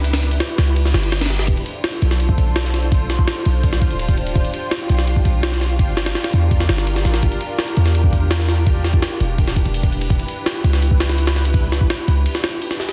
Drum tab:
RD |x-x-x-x-x-x-x-x-x---x-x-x-xxx---|x-x-x---x-x-x---x---x---x---x---|x---x---x---x---x---x-x-x-x-x-x-|x-x-x---x-x-x---x---x---x---x---|
SD |--o-----o---o-----o-o---o-ooo-o-|--------o-----o---------o-o-o---|----o---o---------o-------------|--------o-----o---------o-o-o---|
BD |--------------------------------|o-----------------o-o-----------|o-----o---------o---o-----o-----|o-----------------o-o-----------|

RD |x---x-x-x-x-x---x---x---x---x---|x-x-x---x-x-x---x---x---x---x---|x---x---x---x---x---x-x-x-x-x-x-|x-x-x---x-x-x---x---x---x-x---x-|
SD |----o-o-o-o-------o-o-o---o-o-o-|--------o-----o---------o-o-o---|----o---o---------o-------------|--------o-----o-----o-o---o-o---|
BD |o---------------o---------------|o-----------------o-o-----------|o-----o---------o---o-----o-----|o-----------------o-------------|

RD |x---x---x---x---x---x-x-x-----x-|
SD |----o---o---------o-o-----o-o-o-|
BD |o-----o-------------------------|